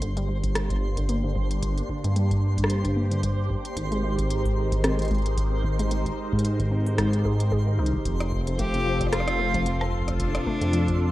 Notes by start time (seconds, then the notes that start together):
Already playing: G1 A#3 D4 G4 C5
0.02 D3, kick, closed hi-hat
0.17 G3, closed hi-hat
0.29 G3
0.44 kick, closed hi-hat
0.55 cross-stick, closed hi-hat
0.70 kick, closed hi-hat
0.97 D3, kick, closed hi-hat
1.09 A#3, closed hi-hat
1.24 D3
1.36 G3, kick
1.51 closed hi-hat
1.62 kick, closed hi-hat
1.78 closed hi-hat
1.89 D3, kick
2.04 G2 G3, closed hi-hat
2.16 G3, closed hi-hat
2.31 kick, closed hi-hat
2.58 kick, closed hi-hat
2.64 cross-stick
2.70 closed hi-hat
2.85 D3, kick, closed hi-hat
2.96 A#3
3.11 D3, closed hi-hat
3.23 G3, kick, closed hi-hat
3.50 kick
3.65 closed hi-hat
3.77 G#1 D#3 G#3 D#4 A#4 C5, kick, closed hi-hat
3.92 G#3, closed hi-hat
4.04 G#3
4.19 kick, closed hi-hat
4.30 closed hi-hat
4.45 kick, closed hi-hat
4.72 D#3, kick, closed hi-hat
4.84 C4, cross-stick, closed hi-hat
4.99 D#3, closed hi-hat
5.02 closed hi-hat
5.05 closed hi-hat
5.08 G#3, kick, closed hi-hat
5.11 closed hi-hat
5.15 closed hi-hat
5.18 closed hi-hat
5.22 closed hi-hat
5.26 closed hi-hat
5.37 kick, closed hi-hat
5.64 D#3, kick
5.79 G#3, closed hi-hat
5.91 G#3, closed hi-hat
6.06 kick, closed hi-hat
6.33 G#2, kick
6.39 closed hi-hat
6.45 closed hi-hat
6.60 D#3, kick, closed hi-hat
6.71 C4
6.86 D#3, closed hi-hat
6.98 G#3, kick, cross-stick, closed hi-hat
7.13 closed hi-hat
7.25 G#4, kick
7.40 closed hi-hat
7.52 G#4, kick
7.67 D#3
7.79 C2 D#4
7.86 closed hi-hat
7.94 kick
8.05 F1 C4 F4 A4, kick, closed hi-hat
8.20 cross-stick, closed hi-hat
8.32 kick
8.47 C3, closed hi-hat
8.59 A3 G4, kick, closed hi-hat
8.74 C3, closed hi-hat
8.86 F3
9.01 kick, cross-stick, closed hi-hat
9.07 cross-stick
9.13 F4, cross-stick, closed hi-hat
9.20 cross-stick
9.28 cross-stick, closed hi-hat
9.39 A3
9.54 F3, kick, closed hi-hat
9.66 F3, closed hi-hat
9.81 cross-stick
9.93 kick
10.02 kick
10.08 kick, cross-stick, closed hi-hat
10.20 D4, kick, closed hi-hat
10.35 C3, cross-stick, closed hi-hat
10.46 A3, kick
10.61 F2 C3, closed hi-hat
10.73 F3, closed hi-hat
10.88 kick, closed hi-hat